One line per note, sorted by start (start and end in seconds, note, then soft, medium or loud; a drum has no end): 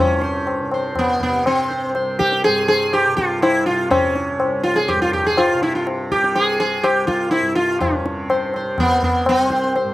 0.00 1.85 C2 medium
0.00 2.47 G2 medium
0.00 0.60 C3 medium
0.00 0.68 C#4 medium
0.22 0.46 C5 soft
0.22 tabla te medium
0.47 tabla na medium
0.60 1.22 C3 soft
0.72 0.96 C5 soft
0.72 tabla na soft
0.96 1.22 B3 medium
0.96 tabla na medium
0.96 tabla ge medium
1.20 3.07 C3 medium
1.20 1.45 B3 medium
1.20 tabla ge medium
1.46 1.92 C4 medium
1.46 tabla na medium
1.70 1.93 C5 soft
1.70 tabla te soft
1.85 4.31 C2 medium
1.95 2.18 C5 soft
1.95 tabla na medium
2.19 2.44 G4 medium
2.19 tabla ke medium
2.32 tabla te medium
2.44 4.93 G2 medium
2.44 2.67 G#4 medium
2.44 tabla na medium
2.68 2.91 G#4 medium
2.68 tabla na medium
2.93 3.16 G4 medium
2.93 tabla na medium
3.07 3.68 C3 medium
3.17 3.42 F4 medium
3.17 tabla ke medium
3.42 3.66 E4 medium
3.42 tabla na medium
3.66 5.54 C3 medium
3.66 3.90 F4 medium
3.66 tabla te medium
3.90 4.63 C#4 medium
3.90 tabla na medium
3.90 tabla ge medium
4.16 tabla te medium
4.31 6.79 C2 medium
4.40 tabla na medium
4.63 4.77 F4 medium
4.63 tabla na medium
4.76 4.89 G#4 medium
4.88 5.01 G4 medium
4.88 tabla na medium
4.88 tabla ge medium
4.93 7.40 G2 medium
5.02 5.13 F4 medium
5.13 5.25 G4 medium
5.13 tabla ge soft
5.26 5.39 G#4 medium
5.37 5.62 F4 medium
5.37 tabla na medium
5.54 6.16 C3 medium
5.62 5.75 E4 medium
5.62 tabla te medium
5.75 5.86 F4 medium
5.87 tabla na medium
6.12 6.37 G4 medium
6.12 tabla ke medium
6.16 8.02 C3 medium
6.24 tabla te medium
6.35 6.59 G#4 medium
6.35 tabla na medium
6.60 6.85 G#4 medium
6.60 tabla na medium
6.79 9.24 C2 medium
6.83 7.07 G4 medium
6.83 tabla na medium
7.07 7.30 F4 medium
7.07 tabla ke medium
7.31 7.55 E4 medium
7.31 tabla na medium
7.40 9.84 G2 soft
7.55 7.80 F4 medium
7.55 tabla te soft
7.80 8.50 C#4 medium
7.80 tabla na medium
7.80 tabla ge medium
8.02 8.63 C3 medium
8.06 tabla te medium
8.30 8.53 C5 soft
8.30 tabla na medium
8.54 8.78 C5 soft
8.54 tabla na medium
8.63 9.94 C3 medium
8.78 9.03 B3 medium
8.78 tabla na medium
8.78 tabla ge medium
9.03 9.28 B3 medium
9.03 tabla ge soft
9.24 9.94 C2 medium
9.24 tabla na medium
9.29 9.40 B3 medium
9.40 9.73 C4 medium
9.50 9.74 C5 soft
9.50 tabla ke soft
9.64 tabla te medium
9.76 9.94 C5 soft
9.76 tabla na medium
9.84 9.94 G2 medium